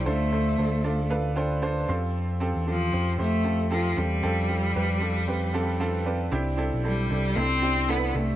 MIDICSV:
0, 0, Header, 1, 4, 480
1, 0, Start_track
1, 0, Tempo, 521739
1, 55, Time_signature, 4, 2, 24, 8
1, 7689, End_track
2, 0, Start_track
2, 0, Title_t, "Upright piano"
2, 0, Program_c, 0, 0
2, 0, Control_c, 0, 64, 127
2, 50, Note_on_c, 0, 62, 77
2, 52, Note_on_c, 0, 65, 77
2, 54, Note_on_c, 0, 50, 51
2, 55, Note_on_c, 0, 69, 75
2, 58, Note_on_c, 0, 72, 91
2, 67, Control_c, 0, 64, 0
2, 231, Control_c, 0, 64, 127
2, 269, Note_off_c, 0, 62, 0
2, 270, Note_off_c, 0, 65, 0
2, 272, Note_off_c, 0, 69, 0
2, 273, Note_off_c, 0, 72, 0
2, 293, Note_on_c, 0, 62, 70
2, 293, Note_on_c, 0, 65, 54
2, 298, Note_on_c, 0, 69, 59
2, 300, Note_on_c, 0, 72, 69
2, 511, Note_off_c, 0, 62, 0
2, 511, Note_off_c, 0, 65, 0
2, 513, Note_off_c, 0, 69, 0
2, 514, Note_off_c, 0, 72, 0
2, 534, Note_on_c, 0, 62, 60
2, 536, Note_on_c, 0, 65, 48
2, 538, Note_on_c, 0, 69, 56
2, 543, Note_on_c, 0, 72, 68
2, 738, Note_off_c, 0, 50, 0
2, 751, Note_off_c, 0, 62, 0
2, 752, Note_off_c, 0, 65, 0
2, 753, Note_off_c, 0, 69, 0
2, 755, Note_off_c, 0, 72, 0
2, 775, Note_on_c, 0, 62, 76
2, 776, Note_on_c, 0, 65, 76
2, 776, Note_on_c, 0, 74, 82
2, 780, Note_on_c, 0, 69, 68
2, 991, Note_off_c, 0, 62, 0
2, 992, Note_off_c, 0, 65, 0
2, 994, Note_off_c, 0, 69, 0
2, 996, Note_off_c, 0, 74, 0
2, 1008, Note_on_c, 0, 62, 73
2, 1011, Note_on_c, 0, 65, 68
2, 1015, Note_on_c, 0, 77, 57
2, 1016, Note_on_c, 0, 69, 72
2, 1019, Note_on_c, 0, 71, 89
2, 1228, Note_off_c, 0, 62, 0
2, 1230, Note_off_c, 0, 65, 0
2, 1232, Note_off_c, 0, 69, 0
2, 1234, Note_off_c, 0, 71, 0
2, 1238, Note_off_c, 0, 77, 0
2, 1249, Note_on_c, 0, 62, 88
2, 1250, Note_on_c, 0, 65, 82
2, 1252, Note_on_c, 0, 79, 55
2, 1255, Note_on_c, 0, 69, 80
2, 1259, Note_on_c, 0, 72, 90
2, 1469, Note_off_c, 0, 62, 0
2, 1470, Note_off_c, 0, 65, 0
2, 1472, Note_off_c, 0, 69, 0
2, 1474, Note_off_c, 0, 72, 0
2, 1477, Note_off_c, 0, 79, 0
2, 1492, Note_on_c, 0, 62, 96
2, 1493, Note_on_c, 0, 65, 79
2, 1495, Note_on_c, 0, 81, 64
2, 1496, Note_on_c, 0, 69, 78
2, 1498, Note_on_c, 0, 72, 112
2, 1710, Note_off_c, 0, 62, 0
2, 1711, Note_off_c, 0, 65, 0
2, 1712, Note_off_c, 0, 69, 0
2, 1714, Note_off_c, 0, 72, 0
2, 1719, Note_off_c, 0, 81, 0
2, 1734, Note_on_c, 0, 60, 79
2, 1737, Note_on_c, 0, 65, 69
2, 1737, Note_on_c, 0, 84, 57
2, 1741, Note_on_c, 0, 67, 66
2, 1741, Note_on_c, 0, 69, 76
2, 1749, Control_c, 0, 64, 0
2, 1883, Control_c, 0, 64, 127
2, 1960, Note_off_c, 0, 84, 0
2, 2168, Note_off_c, 0, 60, 0
2, 2169, Note_off_c, 0, 65, 0
2, 2171, Note_off_c, 0, 67, 0
2, 2171, Note_off_c, 0, 69, 0
2, 2211, Note_on_c, 0, 60, 80
2, 2214, Note_on_c, 0, 65, 66
2, 2218, Note_on_c, 0, 67, 72
2, 2218, Note_on_c, 0, 69, 78
2, 2430, Note_off_c, 0, 60, 0
2, 2431, Note_off_c, 0, 65, 0
2, 2433, Note_off_c, 0, 67, 0
2, 2433, Note_off_c, 0, 69, 0
2, 2451, Note_on_c, 0, 60, 55
2, 2456, Note_on_c, 0, 65, 52
2, 2458, Note_on_c, 0, 67, 48
2, 2462, Note_on_c, 0, 69, 61
2, 2670, Note_off_c, 0, 60, 0
2, 2672, Note_off_c, 0, 65, 0
2, 2674, Note_off_c, 0, 67, 0
2, 2675, Note_off_c, 0, 69, 0
2, 2690, Note_on_c, 0, 60, 59
2, 2693, Note_on_c, 0, 65, 58
2, 2696, Note_on_c, 0, 67, 56
2, 2700, Note_on_c, 0, 72, 69
2, 2910, Note_off_c, 0, 60, 0
2, 2911, Note_off_c, 0, 65, 0
2, 2912, Note_off_c, 0, 67, 0
2, 2914, Note_off_c, 0, 72, 0
2, 2929, Note_on_c, 0, 60, 64
2, 2929, Note_on_c, 0, 65, 64
2, 2934, Note_on_c, 0, 67, 62
2, 2936, Note_on_c, 0, 72, 77
2, 3149, Note_off_c, 0, 60, 0
2, 3149, Note_off_c, 0, 65, 0
2, 3152, Note_off_c, 0, 67, 0
2, 3153, Note_off_c, 0, 72, 0
2, 3165, Note_on_c, 0, 60, 71
2, 3169, Note_on_c, 0, 65, 71
2, 3171, Note_on_c, 0, 67, 65
2, 3174, Note_on_c, 0, 69, 82
2, 3387, Note_off_c, 0, 60, 0
2, 3389, Note_off_c, 0, 65, 0
2, 3390, Note_off_c, 0, 67, 0
2, 3391, Note_off_c, 0, 69, 0
2, 3411, Note_on_c, 0, 60, 86
2, 3416, Note_on_c, 0, 65, 78
2, 3417, Note_on_c, 0, 67, 66
2, 3420, Note_on_c, 0, 69, 92
2, 3630, Note_off_c, 0, 60, 0
2, 3632, Note_off_c, 0, 65, 0
2, 3633, Note_off_c, 0, 67, 0
2, 3634, Note_off_c, 0, 69, 0
2, 3651, Note_on_c, 0, 60, 58
2, 3653, Note_on_c, 0, 65, 52
2, 3657, Note_on_c, 0, 67, 54
2, 3659, Note_on_c, 0, 69, 58
2, 3870, Note_off_c, 0, 60, 0
2, 3871, Note_off_c, 0, 65, 0
2, 3873, Note_off_c, 0, 67, 0
2, 3874, Note_off_c, 0, 69, 0
2, 3890, Note_on_c, 0, 60, 84
2, 3892, Note_on_c, 0, 65, 69
2, 3896, Note_on_c, 0, 67, 71
2, 3896, Note_on_c, 0, 69, 93
2, 4109, Note_off_c, 0, 60, 0
2, 4110, Note_off_c, 0, 65, 0
2, 4112, Note_off_c, 0, 67, 0
2, 4113, Note_off_c, 0, 69, 0
2, 4128, Note_on_c, 0, 60, 66
2, 4130, Note_on_c, 0, 65, 58
2, 4134, Note_on_c, 0, 67, 57
2, 4137, Note_on_c, 0, 69, 68
2, 4349, Note_off_c, 0, 60, 0
2, 4350, Note_off_c, 0, 65, 0
2, 4352, Note_off_c, 0, 67, 0
2, 4353, Note_off_c, 0, 69, 0
2, 4371, Note_on_c, 0, 60, 60
2, 4374, Note_on_c, 0, 65, 60
2, 4377, Note_on_c, 0, 67, 59
2, 4379, Note_on_c, 0, 71, 77
2, 4590, Note_off_c, 0, 60, 0
2, 4591, Note_off_c, 0, 65, 0
2, 4593, Note_off_c, 0, 67, 0
2, 4594, Note_off_c, 0, 71, 0
2, 4610, Note_on_c, 0, 60, 76
2, 4612, Note_on_c, 0, 65, 63
2, 4616, Note_on_c, 0, 67, 67
2, 4618, Note_on_c, 0, 69, 81
2, 4830, Note_off_c, 0, 60, 0
2, 4831, Note_off_c, 0, 65, 0
2, 4832, Note_off_c, 0, 67, 0
2, 4833, Note_off_c, 0, 69, 0
2, 4854, Note_on_c, 0, 60, 75
2, 4855, Note_on_c, 0, 65, 66
2, 4860, Note_on_c, 0, 67, 76
2, 4863, Note_on_c, 0, 71, 91
2, 5071, Note_off_c, 0, 60, 0
2, 5072, Note_off_c, 0, 65, 0
2, 5074, Note_off_c, 0, 67, 0
2, 5076, Note_off_c, 0, 71, 0
2, 5093, Note_on_c, 0, 60, 92
2, 5096, Note_on_c, 0, 65, 83
2, 5097, Note_on_c, 0, 81, 55
2, 5099, Note_on_c, 0, 67, 74
2, 5102, Note_on_c, 0, 69, 99
2, 5171, Note_off_c, 0, 81, 0
2, 5179, Note_on_c, 0, 79, 56
2, 5311, Note_off_c, 0, 60, 0
2, 5312, Note_off_c, 0, 65, 0
2, 5314, Note_off_c, 0, 67, 0
2, 5316, Note_off_c, 0, 69, 0
2, 5326, Note_off_c, 0, 79, 0
2, 5335, Note_on_c, 0, 60, 94
2, 5337, Note_on_c, 0, 77, 60
2, 5338, Note_on_c, 0, 65, 86
2, 5341, Note_on_c, 0, 67, 78
2, 5345, Note_on_c, 0, 69, 100
2, 5552, Note_off_c, 0, 60, 0
2, 5553, Note_off_c, 0, 65, 0
2, 5555, Note_off_c, 0, 67, 0
2, 5557, Note_off_c, 0, 69, 0
2, 5560, Note_off_c, 0, 77, 0
2, 5572, Note_on_c, 0, 60, 63
2, 5575, Note_on_c, 0, 65, 62
2, 5577, Note_on_c, 0, 74, 57
2, 5578, Note_on_c, 0, 67, 65
2, 5580, Note_on_c, 0, 71, 77
2, 5791, Note_off_c, 0, 60, 0
2, 5792, Note_off_c, 0, 65, 0
2, 5793, Note_off_c, 0, 67, 0
2, 5794, Note_off_c, 0, 71, 0
2, 5800, Note_off_c, 0, 74, 0
2, 5809, Note_on_c, 0, 60, 88
2, 5811, Note_on_c, 0, 62, 84
2, 5814, Note_on_c, 0, 64, 83
2, 5818, Note_on_c, 0, 67, 103
2, 5830, Control_c, 0, 64, 0
2, 6001, Control_c, 0, 64, 127
2, 6030, Note_off_c, 0, 62, 0
2, 6032, Note_off_c, 0, 60, 0
2, 6032, Note_off_c, 0, 64, 0
2, 6034, Note_off_c, 0, 67, 0
2, 6046, Note_on_c, 0, 60, 79
2, 6049, Note_on_c, 0, 62, 70
2, 6053, Note_on_c, 0, 64, 72
2, 6056, Note_on_c, 0, 69, 78
2, 6267, Note_off_c, 0, 60, 0
2, 6269, Note_off_c, 0, 62, 0
2, 6271, Note_off_c, 0, 64, 0
2, 6273, Note_off_c, 0, 69, 0
2, 6291, Note_on_c, 0, 60, 62
2, 6294, Note_on_c, 0, 62, 45
2, 6296, Note_on_c, 0, 64, 52
2, 6300, Note_on_c, 0, 69, 67
2, 6510, Note_off_c, 0, 60, 0
2, 6511, Note_off_c, 0, 62, 0
2, 6512, Note_off_c, 0, 64, 0
2, 6514, Note_off_c, 0, 69, 0
2, 6530, Note_on_c, 0, 60, 64
2, 6531, Note_on_c, 0, 62, 57
2, 6537, Note_on_c, 0, 64, 57
2, 6537, Note_on_c, 0, 69, 66
2, 6749, Note_off_c, 0, 60, 0
2, 6750, Note_off_c, 0, 62, 0
2, 6753, Note_off_c, 0, 64, 0
2, 6753, Note_off_c, 0, 69, 0
2, 6773, Note_on_c, 0, 60, 62
2, 6777, Note_on_c, 0, 62, 56
2, 6777, Note_on_c, 0, 64, 60
2, 6782, Note_on_c, 0, 69, 72
2, 6991, Note_off_c, 0, 60, 0
2, 6993, Note_off_c, 0, 62, 0
2, 6993, Note_off_c, 0, 64, 0
2, 6995, Note_off_c, 0, 69, 0
2, 7009, Note_on_c, 0, 60, 82
2, 7012, Note_on_c, 0, 62, 69
2, 7016, Note_on_c, 0, 64, 62
2, 7017, Note_on_c, 0, 67, 84
2, 7229, Note_off_c, 0, 60, 0
2, 7230, Note_off_c, 0, 62, 0
2, 7232, Note_off_c, 0, 64, 0
2, 7233, Note_off_c, 0, 67, 0
2, 7249, Note_on_c, 0, 60, 77
2, 7254, Note_on_c, 0, 62, 67
2, 7255, Note_on_c, 0, 64, 72
2, 7257, Note_on_c, 0, 69, 92
2, 7469, Note_off_c, 0, 60, 0
2, 7471, Note_off_c, 0, 62, 0
2, 7472, Note_off_c, 0, 64, 0
2, 7473, Note_off_c, 0, 69, 0
2, 7488, Note_on_c, 0, 60, 56
2, 7491, Note_on_c, 0, 62, 53
2, 7493, Note_on_c, 0, 64, 53
2, 7497, Note_on_c, 0, 69, 62
2, 7689, Note_off_c, 0, 60, 0
2, 7689, Note_off_c, 0, 62, 0
2, 7689, Note_off_c, 0, 64, 0
2, 7689, Note_off_c, 0, 69, 0
2, 7689, End_track
3, 0, Start_track
3, 0, Title_t, "Cello"
3, 0, Program_c, 1, 42
3, 68, Note_on_c, 1, 57, 86
3, 985, Note_off_c, 1, 57, 0
3, 2477, Note_on_c, 1, 53, 78
3, 2914, Note_off_c, 1, 53, 0
3, 2950, Note_on_c, 1, 57, 89
3, 3390, Note_off_c, 1, 57, 0
3, 3428, Note_on_c, 1, 53, 84
3, 3668, Note_on_c, 1, 55, 84
3, 3682, Note_off_c, 1, 53, 0
3, 5582, Note_off_c, 1, 55, 0
3, 6305, Note_on_c, 1, 55, 83
3, 6782, Note_on_c, 1, 60, 98
3, 6795, Note_off_c, 1, 55, 0
3, 7264, Note_on_c, 1, 59, 82
3, 7278, Note_off_c, 1, 60, 0
3, 7504, Note_on_c, 1, 57, 82
3, 7518, Note_off_c, 1, 59, 0
3, 7689, Note_off_c, 1, 57, 0
3, 7689, End_track
4, 0, Start_track
4, 0, Title_t, "Picked electric bass"
4, 0, Program_c, 2, 34
4, 59, Note_on_c, 2, 38, 91
4, 504, Note_off_c, 2, 38, 0
4, 538, Note_on_c, 2, 38, 90
4, 1700, Note_off_c, 2, 38, 0
4, 1740, Note_on_c, 2, 41, 92
4, 2316, Note_off_c, 2, 41, 0
4, 2353, Note_on_c, 2, 40, 72
4, 2673, Note_off_c, 2, 40, 0
4, 2698, Note_on_c, 2, 41, 80
4, 2920, Note_off_c, 2, 41, 0
4, 2935, Note_on_c, 2, 41, 81
4, 3620, Note_off_c, 2, 41, 0
4, 3658, Note_on_c, 2, 40, 83
4, 3881, Note_off_c, 2, 40, 0
4, 3899, Note_on_c, 2, 41, 86
4, 4344, Note_off_c, 2, 41, 0
4, 4377, Note_on_c, 2, 41, 86
4, 5780, Note_off_c, 2, 41, 0
4, 5816, Note_on_c, 2, 36, 86
4, 6164, Note_off_c, 2, 36, 0
4, 6193, Note_on_c, 2, 35, 70
4, 6513, Note_off_c, 2, 35, 0
4, 6536, Note_on_c, 2, 36, 71
4, 6759, Note_off_c, 2, 36, 0
4, 6778, Note_on_c, 2, 36, 88
4, 7461, Note_off_c, 2, 36, 0
4, 7495, Note_on_c, 2, 36, 81
4, 7689, Note_off_c, 2, 36, 0
4, 7689, End_track
0, 0, End_of_file